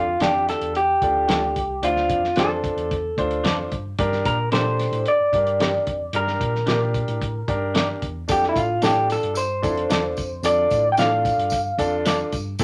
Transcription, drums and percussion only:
0.20 snare, closed hi-hat
0.49 snare, closed hi-hat
0.62 closed hi-hat
0.75 closed hi-hat
1.02 kick, closed hi-hat
1.29 snare, closed hi-hat
1.56 kick, closed hi-hat
1.83 closed hi-hat
1.97 snare
2.10 kick, closed hi-hat
2.24 snare
2.36 snare, closed hi-hat
2.64 kick, closed hi-hat
2.78 closed hi-hat
2.91 kick, closed hi-hat
3.18 kick, closed hi-hat
3.31 closed hi-hat
3.45 snare, closed hi-hat
3.72 kick, closed hi-hat
3.99 kick, closed hi-hat
4.12 snare
4.25 kick, closed hi-hat
4.52 snare, closed hi-hat
4.80 snare, closed hi-hat
4.93 closed hi-hat
5.06 closed hi-hat
5.33 kick, closed hi-hat
5.47 closed hi-hat
5.60 snare, closed hi-hat
5.87 kick, closed hi-hat
6.13 closed hi-hat
6.28 snare
6.41 kick, closed hi-hat
6.55 snare
6.67 snare, closed hi-hat
6.94 kick, closed hi-hat
7.08 closed hi-hat
7.22 kick, closed hi-hat
7.48 kick, closed hi-hat
7.75 snare, closed hi-hat
8.02 kick, closed hi-hat
8.29 kick, closed hi-hat, tambourine
8.43 snare
8.56 kick, closed hi-hat, tambourine
8.82 snare, closed hi-hat, tambourine
9.10 snare, closed hi-hat, tambourine
9.23 closed hi-hat
9.35 closed hi-hat, tambourine
9.63 kick, closed hi-hat, tambourine
9.77 closed hi-hat
9.90 snare, closed hi-hat, tambourine
10.17 kick, closed hi-hat, tambourine
10.43 closed hi-hat, tambourine
10.70 kick, closed hi-hat, tambourine
10.97 snare, closed hi-hat, tambourine
11.25 kick, closed hi-hat, tambourine
11.39 closed hi-hat
11.50 kick, closed hi-hat, tambourine
11.79 kick, closed hi-hat, tambourine
12.06 snare, closed hi-hat, tambourine
12.32 kick, closed hi-hat, tambourine
12.59 kick, closed hi-hat, tambourine

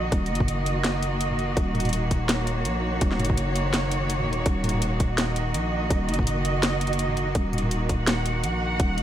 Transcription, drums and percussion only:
0.12 kick, closed hi-hat
0.26 closed hi-hat
0.35 closed hi-hat
0.40 kick, mid tom
0.48 closed hi-hat
0.66 closed hi-hat
0.84 snare, closed hi-hat
1.02 closed hi-hat
1.21 closed hi-hat
1.31 mid tom
1.39 closed hi-hat
1.57 kick, closed hi-hat
1.75 closed hi-hat, mid tom
1.80 closed hi-hat
1.85 closed hi-hat, mid tom
1.89 closed hi-hat
1.93 closed hi-hat
2.11 kick, closed hi-hat
2.29 snare, closed hi-hat
2.47 closed hi-hat
2.65 closed hi-hat
3.01 kick, closed hi-hat
3.12 snare
3.19 closed hi-hat, mid tom
3.25 closed hi-hat
3.30 kick, mid tom
3.37 closed hi-hat
3.56 closed hi-hat
3.74 snare, closed hi-hat
3.91 closed hi-hat
4.10 closed hi-hat
4.20 mid tom
4.33 closed hi-hat
4.46 kick, closed hi-hat
4.64 closed hi-hat, mid tom
4.69 closed hi-hat
4.74 mid tom
4.82 closed hi-hat
5.00 kick, closed hi-hat
5.18 snare, closed hi-hat
5.36 closed hi-hat
5.54 closed hi-hat
5.90 kick, closed hi-hat
6.09 closed hi-hat
6.14 closed hi-hat
6.19 kick
6.23 mid tom
6.27 closed hi-hat
6.45 closed hi-hat
6.63 snare, closed hi-hat
6.81 closed hi-hat
6.87 closed hi-hat
6.93 closed hi-hat
6.99 closed hi-hat
7.09 mid tom
7.17 closed hi-hat
7.35 kick, closed hi-hat
7.53 closed hi-hat, mid tom
7.58 closed hi-hat
7.63 mid tom
7.71 closed hi-hat
7.89 kick, closed hi-hat
8.07 snare, closed hi-hat
8.26 closed hi-hat
8.44 closed hi-hat
8.80 kick, closed hi-hat
8.98 closed hi-hat

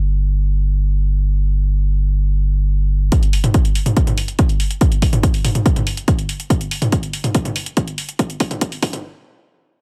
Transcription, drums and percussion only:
3.12 kick, closed hi-hat
3.23 closed hi-hat
3.33 open hi-hat
3.44 closed hi-hat, mid tom
3.54 kick, closed hi-hat
3.65 closed hi-hat
3.75 open hi-hat
3.86 closed hi-hat, mid tom
3.97 kick, closed hi-hat
4.07 closed hi-hat, mid tom
4.18 open hi-hat
4.28 closed hi-hat
4.39 kick, closed hi-hat
4.49 closed hi-hat
4.60 open hi-hat
4.71 closed hi-hat
4.81 kick, closed hi-hat
4.92 closed hi-hat
5.02 kick, open hi-hat
5.13 closed hi-hat, mid tom
5.23 kick, closed hi-hat
5.34 open hi-hat
5.45 mid tom, open hi-hat
5.55 closed hi-hat, mid tom
5.66 kick, closed hi-hat
5.76 closed hi-hat, mid tom
5.87 open hi-hat
5.97 closed hi-hat
6.08 kick, closed hi-hat
6.19 closed hi-hat
6.29 open hi-hat
6.40 closed hi-hat
6.50 kick, closed hi-hat
6.61 closed hi-hat
6.71 open hi-hat
6.82 closed hi-hat, mid tom
6.92 kick, closed hi-hat
7.03 closed hi-hat
7.13 open hi-hat
7.24 closed hi-hat, mid tom
7.35 kick, closed hi-hat
7.45 closed hi-hat, mid tom
7.56 open hi-hat
7.66 closed hi-hat
7.77 kick, closed hi-hat
7.87 closed hi-hat
7.98 open hi-hat
8.09 closed hi-hat
8.19 kick, closed hi-hat
8.30 closed hi-hat
8.40 kick, open hi-hat
8.51 closed hi-hat, mid tom
8.61 kick, closed hi-hat
8.72 open hi-hat
8.83 kick, mid tom, open hi-hat
8.93 closed hi-hat, mid tom

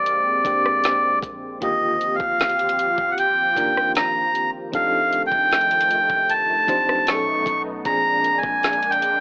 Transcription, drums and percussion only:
0.06 closed hi-hat
0.45 kick, closed hi-hat
0.66 cross-stick
0.84 snare, closed hi-hat
1.23 kick, closed hi-hat
1.62 kick, closed hi-hat
2.01 closed hi-hat
2.20 kick
2.40 snare, closed hi-hat
2.49 closed hi-hat
2.59 closed hi-hat
2.69 closed hi-hat
2.79 closed hi-hat
2.98 kick
3.18 closed hi-hat
3.57 kick, closed hi-hat
3.77 cross-stick
3.95 snare, closed hi-hat
4.35 closed hi-hat
4.73 kick, closed hi-hat
5.13 closed hi-hat
5.32 kick
5.51 snare, closed hi-hat
5.61 closed hi-hat
5.71 closed hi-hat
5.81 closed hi-hat
5.91 closed hi-hat
6.10 kick
6.30 closed hi-hat
6.68 kick, closed hi-hat
6.89 cross-stick
7.07 snare, closed hi-hat
7.46 kick, closed hi-hat
7.85 kick, closed hi-hat
8.24 closed hi-hat
8.43 kick
8.63 snare, closed hi-hat
8.73 closed hi-hat
8.83 closed hi-hat
8.92 closed hi-hat
9.02 closed hi-hat

